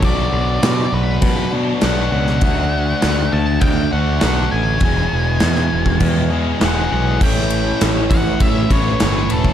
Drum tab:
CC |x---x---x---x---|x---x---x---x---|x---x---x---x---|x---------------|
RD |----------------|----------------|----------------|--x-x-x-x-x-x-x-|
SD |----o-------o--o|----o-------o---|----oo------o---|----o-------o---|
BD |o-------o-------|o-------o-------|o------oo-------|o-----o-o-o----o|